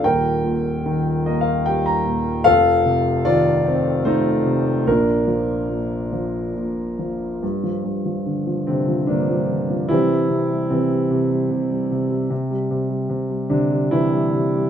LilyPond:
<<
  \new Staff \with { instrumentName = "Grand piano" } { \time 3/4 \key bes \major \tempo 4 = 74 <bes' g''>4 \tuplet 3/2 { r8. ees''16 f''8 } g''16 bes''8. | <a' f''>4 <f' d''>4 <ees' c''>4 | <d' bes'>2 r4 | \key g \dorian r4. <c c'>8 <d bes d'>4 |
<e g c' e'>4 <e c'>4. r8 | r4. <d d'>8 <e g e'>4 | }
  \new Staff \with { instrumentName = "Grand piano" } { \clef bass \time 3/4 \key bes \major <ees,, ees,>8 bes,8 ees8 bes8 g8 bes,8 | <f,, f,>8 c8 ees8 c'8 a8 c8 | <bes,, bes,>8 f8 bes,8 f8 bes,8 f8 | \key g \dorian g,16 f16 g,16 f16 d16 f16 d16 f16 g,16 f16 d16 f16 |
c16 g16 c16 g16 c16 g16 c16 g16 c16 g16 c16 g16 | c16 g16 c16 g16 c16 g16 c16 g16 c16 g16 c16 g16 | }
>>